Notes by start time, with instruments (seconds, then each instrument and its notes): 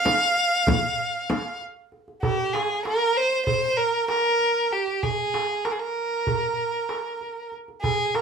Already playing: violin F5
0.05 darbuka tek, frame drum
0.36 darbuka ka
0.67 darbuka dum, frame drum
0.99 darbuka ka
1.30 darbuka tek, frame drum
1.61 darbuka ka
1.92 darbuka ka
2.08 darbuka ka
2.22 violin G4, darbuka dum
2.53 violin G#4, darbuka tek
2.85 violin A#4, darbuka tek
3.17 violin C5
3.46 violin C5, darbuka dum
3.77 violin A#4
4.08 violin A#4, darbuka tek
4.39 darbuka ka
4.71 violin G4, darbuka ka
4.88 darbuka ka
5.03 violin G#4, darbuka dum
5.34 darbuka tek
5.65 violin A#4, darbuka tek
5.72 violin G#4
5.79 violin A#4
6.27 darbuka dum
6.89 darbuka tek
7.21 darbuka ka
7.52 darbuka ka
7.68 darbuka ka
7.81 violin G#4, darbuka dum
8.15 violin A#4, darbuka tek